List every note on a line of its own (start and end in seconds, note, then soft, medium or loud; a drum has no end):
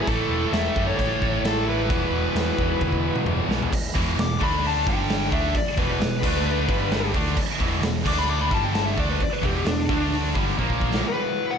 0.01 0.07 E4 medium
0.01 0.08 G#4 medium
0.06 0.21 A1 medium
0.06 0.73 A2 medium
0.06 0.78 E3 medium
0.06 0.74 A3 medium
0.06 0.55 A4 loud
0.06 kick loud
0.06 crash medium
0.10 0.51 E4 medium
0.30 0.44 E1 medium
0.53 0.67 E1 loud
0.53 0.85 A4 medium
0.53 0.84 E5 loud
0.53 snare loud
0.53 crash medium
0.76 0.90 F#2 medium
0.76 1.90 A2 medium
0.76 1.89 E3 medium
0.76 1.88 A3 medium
0.76 kick loud
0.87 0.99 A4 medium
0.87 0.97 C#5 medium
0.98 1.13 A1 medium
0.98 1.42 A4 medium
0.98 1.40 C#5 loud
0.98 kick medium
0.98 crash medium
1.22 1.35 A1 medium
1.22 kick medium
1.43 1.91 A1 medium
1.43 1.65 E4 medium
1.43 1.66 A4 medium
1.43 snare loud
1.43 crash medium
1.67 1.89 A2 medium
1.67 1.89 E3 medium
1.67 1.88 A3 medium
1.67 3.22 E4 medium
1.67 3.23 B4 medium
1.89 2.03 E1 medium
1.89 2.56 E2 medium
1.89 2.57 B2 loud
1.89 2.55 E3 loud
1.89 kick loud
1.89 crash medium
2.11 2.25 E1 medium
2.35 2.49 E2 medium
2.35 snare loud
2.35 crash medium
2.56 2.72 E2 medium
2.56 3.71 E2 medium
2.56 3.70 B2 medium
2.56 3.70 E3 medium
2.56 kick medium
2.81 3.08 E1 medium
2.81 kick medium
2.81 high tom medium
2.92 kick medium
3.16 mid tom medium
3.26 3.40 E1 medium
3.26 mid tom medium
3.49 3.62 B1 medium
3.49 3.71 E2 medium
3.49 3.71 B2 medium
3.49 3.70 E3 medium
3.49 snare medium
3.62 floor tom medium
3.73 kick loud
3.73 crash loud
3.94 4.16 E1 medium
3.94 4.15 E2 medium
3.94 4.16 B2 medium
3.94 4.17 E3 medium
3.94 kick medium
3.94 open hi-hat medium
4.16 4.38 E1 medium
4.16 4.35 E2 medium
4.16 4.35 B2 medium
4.16 snare loud
4.16 open hi-hat medium
4.20 4.41 D6 loud
4.39 4.83 D2 medium
4.39 4.84 D3 medium
4.39 4.84 A3 medium
4.39 4.85 D4 medium
4.39 kick loud
4.39 open hi-hat medium
4.43 4.64 B5 medium
4.64 4.87 A5 medium
4.64 open hi-hat medium
4.85 5.28 G1 medium
4.85 5.30 G2 medium
4.85 5.30 D3 medium
4.85 5.30 G3 loud
4.85 kick loud
4.85 snare soft
4.90 5.32 G5 loud
5.10 snare loud
5.10 open hi-hat medium
5.31 5.53 D2 medium
5.31 5.53 D3 medium
5.31 5.54 A3 medium
5.31 5.54 D4 loud
5.31 5.54 E5 medium
5.31 kick loud
5.31 open hi-hat medium
5.55 5.78 D5 loud
5.55 kick loud
5.55 open hi-hat medium
5.77 5.98 E1 medium
5.77 5.98 E2 loud
5.77 5.99 B2 medium
5.77 5.99 E3 loud
5.77 7.11 B4 medium
5.77 kick medium
5.77 open hi-hat soft
6.00 6.21 E1 medium
6.00 6.18 E2 medium
6.00 6.18 B2 medium
6.00 snare loud
6.00 open hi-hat medium
6.20 6.65 D2 medium
6.20 6.66 D3 medium
6.20 6.67 A3 medium
6.20 6.67 D4 medium
6.20 kick loud
6.20 crash loud
6.25 6.69 D3 medium
6.25 6.69 A3 medium
6.25 6.69 D4 medium
6.67 7.11 G1 medium
6.67 7.12 G2 loud
6.67 7.12 D3 loud
6.67 7.13 G3 loud
6.67 kick loud
6.67 open hi-hat medium
6.91 snare loud
6.91 open hi-hat medium
7.13 7.35 D2 medium
7.13 7.35 D3 medium
7.13 7.36 A3 medium
7.13 7.36 D4 loud
7.13 kick medium
7.13 open hi-hat medium
7.27 snare soft
7.37 kick loud
7.37 crash loud
7.60 7.81 E1 medium
7.60 7.82 E2 medium
7.60 7.82 B2 loud
7.60 7.83 E3 loud
7.60 kick loud
7.60 open hi-hat medium
7.82 8.04 E1 medium
7.82 8.02 E2 medium
7.82 8.05 B2 medium
7.82 snare loud
7.82 open hi-hat medium
8.05 8.48 D2 medium
8.05 8.50 D3 medium
8.05 8.51 A3 medium
8.05 8.51 D4 loud
8.05 8.19 D6 loud
8.05 kick loud
8.05 crash loud
8.19 8.29 B5 loud
8.30 8.41 D6 loud
8.41 8.54 B5 medium
8.50 8.94 G1 medium
8.50 8.96 G2 loud
8.50 8.96 D3 medium
8.50 8.97 G3 loud
8.50 8.64 A5 loud
8.50 kick loud
8.50 open hi-hat medium
8.64 8.74 G5 medium
8.74 8.85 A5 medium
8.74 snare loud
8.74 open hi-hat medium
8.85 8.97 E5 medium
8.97 9.18 D2 loud
8.97 9.19 D3 loud
8.97 9.20 A3 loud
8.97 9.20 D4 loud
8.97 9.10 D5 medium
8.97 kick loud
8.97 open hi-hat medium
9.11 9.21 B4 medium
9.20 9.33 D5 loud
9.20 kick loud
9.20 open hi-hat medium
9.33 9.43 B4 medium
9.42 9.64 E1 medium
9.42 9.65 E2 medium
9.42 9.65 B2 loud
9.42 9.65 E3 loud
9.42 9.66 G4 medium
9.42 kick medium
9.42 open hi-hat medium
9.65 9.87 E1 medium
9.65 9.84 E2 medium
9.65 9.85 B2 medium
9.65 10.11 D4 loud
9.65 snare loud
9.65 open hi-hat medium
9.88 10.32 D2 medium
9.88 10.34 D3 medium
9.88 10.34 A3 medium
9.88 10.35 D4 medium
9.88 kick loud
9.88 open hi-hat medium
10.12 open hi-hat medium
10.35 10.56 G1 medium
10.35 10.57 G2 medium
10.35 10.56 D3 medium
10.35 10.57 G3 medium
10.35 kick loud
10.35 open hi-hat medium
10.57 11.01 A#1 loud
10.57 11.03 A#2 medium
10.57 11.03 F3 loud
10.57 11.03 A#3 medium
10.57 kick medium
10.70 kick medium
10.81 kick medium
10.94 snare medium
11.03 11.58 E2 medium
11.03 11.58 B2 medium
11.03 11.58 E3 loud
11.08 11.53 B4 loud
11.51 11.58 F#5 loud